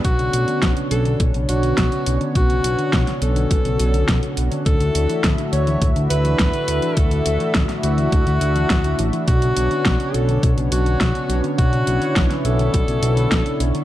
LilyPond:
<<
  \new Staff \with { instrumentName = "Alto saxophone" } { \time 4/4 \key b \minor \tempo 4 = 104 fis'4. a'8 r8 fis'4. | fis'4. a'2~ a'8 | a'4. cis''8 r8 b'4. | a'4. fis'2~ fis'8 |
fis'4. a'8 r8 fis'4. | fis'4. a'2~ a'8 | }
  \new Staff \with { instrumentName = "Analog synth pad" } { \time 4/4 \key b \minor << { <b cis' d' cis''>1~ | <b cis' d' cis''>1 | <a d' e' e''>1~ | <a d' e' e''>1 |
<b cis' cis''>1~ | <b cis' cis''>1 | } \\ { fis'1~ | fis'1~ | fis'1~ | fis'1~ |
fis'1 | e'1 | } >> }
  \new Staff \with { instrumentName = "Synth arpeggio sound" } { \clef bass \time 4/4 \key b \minor b,16 cis16 r16 d16 b,16 cis16 r16 d16 b,16 cis16 r16 d16 b,16 cis16 r16 d16 | b,16 cis16 r16 d16 b,16 cis16 r16 d16 b,16 cis16 r16 d16 b,16 cis16 r16 d16 | a,16 d16 r16 e16 a,16 d16 r16 e16 a,16 d16 r16 e16 a,16 d16 r16 e16 | a,16 d16 r16 e16 a,16 d16 r16 e16 a,16 d16 r16 e16 a,16 d16 r16 e16 |
b,16 cis16 r16 d16 b,16 cis16 r16 d16 b,16 cis16 r16 d16 b,16 cis16 r16 d16 | b,16 cis16 r16 d16 b,16 cis16 r16 d16 b,16 cis16 r16 d16 b,16 cis16 r16 d16 | }
  \new Staff \with { instrumentName = "Analog synth bass" } { \clef bass \time 4/4 \key b \minor b,,8 b,,16 r16 b,,16 r16 b,,8 b,,16 b,,16 b,,8 b,,16 r16 b,,16 r16 | b,,8 b,,16 r16 b,,16 r16 b,,8 b,,16 b,,16 b,,8 b,,16 r16 b,,16 r16 | d,8 d,16 r16 d,16 r16 d,8 d,16 d,16 d,8 d,16 r16 d,16 r16 | d,8 d,16 r16 d,16 r16 d,8 d,16 d,16 d,8 d,8 a,,16 r16 |
b,,8 b,,16 r16 b,,16 r16 b,,8 b,,16 b,,16 b,,8 b,,16 r16 b,,16 r16 | b,,8 b,,16 r16 b,,16 r16 b,,8 b,,16 b,,16 b,,8 b,,16 r16 b,,16 r16 | }
  \new DrumStaff \with { instrumentName = "Drums" } \drummode { \time 4/4 <hh bd>16 hh16 hh16 hh16 <hh bd sn>16 hh16 hh16 hh16 <hh bd>16 hh16 hh16 hh16 <hh bd sn>16 hh16 hh16 hh16 | <hh bd>16 hh16 hh16 hh16 <hh bd sn>16 <hh sn>16 hh16 hh16 <hh bd>16 hh16 hh16 hh16 <hh bd sn>16 hh16 hh16 hh16 | <hh bd>16 hh16 hh16 hh16 <hh bd sn>16 hh16 hh16 hh16 <hh bd>16 hh16 hh16 hh16 <hh bd sn>16 hh16 hh16 hh16 | <hh bd>16 hh16 hh16 hh16 <hh bd sn>16 <hh sn>16 hh16 hh16 <hh bd>16 hh16 hh16 hh16 <hh bd sn>16 hh16 hh16 hh16 |
<hh bd>16 hh16 hh16 hh16 <hh bd sn>16 hh16 hh16 hh16 <hh bd>16 hh16 hh16 hh16 <hh bd sn>16 hh16 hh16 hh16 | <hh bd>16 hh16 hh16 hh16 <hh bd sn>16 <hh sn>16 hh16 hh16 <hh bd>16 hh16 hh16 hh16 <hh bd sn>16 hh16 hh16 hh16 | }
>>